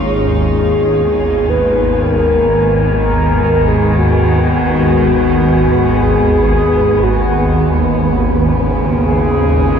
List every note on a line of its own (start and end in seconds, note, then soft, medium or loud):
0.00 9.79 G#1 medium
0.00 9.79 D#2 medium
0.00 8.03 G#2 medium
0.00 3.23 D#4 medium
0.00 2.04 F4 medium
0.00 1.51 G#4 medium
0.05 9.79 B3 medium
0.05 9.79 G#4 medium
0.38 8.02 D#3 medium
0.73 9.79 B3 medium
1.50 2.03 B4 loud
2.02 3.02 A#4 loud
3.02 3.70 A#4 loud
3.68 4.00 G#4 medium
3.98 6.04 F#4 medium
6.03 7.05 G#4 medium
7.03 7.78 F#4 medium
8.05 9.79 C#3 medium
8.63 9.79 G#3 medium
9.03 9.79 G#4 medium
9.41 9.79 F4 medium